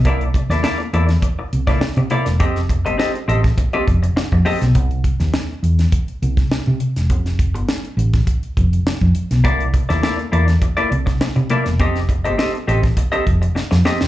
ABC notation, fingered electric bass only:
X:1
M:4/4
L:1/16
Q:1/4=102
K:Cmix
V:1 name="Fingered electric bass" clef=bass
C,,3 _E,, z2 =E,,2 z2 C,,2 z C, z E,,, | F,,,3 G,,, z2 A,,,2 z2 F,,,2 z F,, z =B,,, | C,,3 _E,, z2 =E,,2 z2 C,,2 z C, z E,,, | F,,,3 G,,, z2 A,,,2 z2 F,,,2 z F,, z =B,,, |
C,,3 _E,, z2 =E,,2 z2 C,,2 z C, z E,,, | F,,,3 G,,, z2 A,,,2 z2 F,,,2 z F,, z E,,, |]